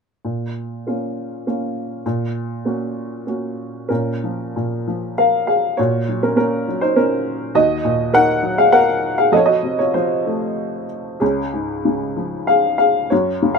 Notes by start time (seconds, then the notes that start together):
0.25 A#2
0.87 A#3 C#4 F4
1.47 A#3 C#4 F4
2.06 A#2
2.65 A#3 C#4 F#4
3.27 A#3 C#4 F#4
3.89 A#2 C#4 A#4
4.24 F3
4.56 A#2
4.88 F3
5.18 A#4 F5
5.47 G#4 F5
5.77 A#2 F#4 C#5
6.09 F#3
6.23 C#4 A#4
6.36 A#3 C#4 A#4
6.68 F#3
6.81 D#4 C5
6.96 C#4 A#4
7.55 D#2 F#4 D#5
7.85 A#2
8.13 D#3 A#4 F#5
8.43 F#3
8.58 G#4 F5
8.72 A#4 F#5
9.18 G#4 F5
9.32 F2 A4 D#5
9.36 C#5
9.46 F#4 D#5
9.63 C3
9.79 F4 C#5
9.94 F3 F4 C5
10.26 A3
11.20 C#2 C#4 G#4
11.53 G#2
11.85 C#3
12.17 F3
12.47 G#4 F5
12.78 G#4 F5
13.10 F#2 F#4 C#5
13.42 C#3
13.55 F5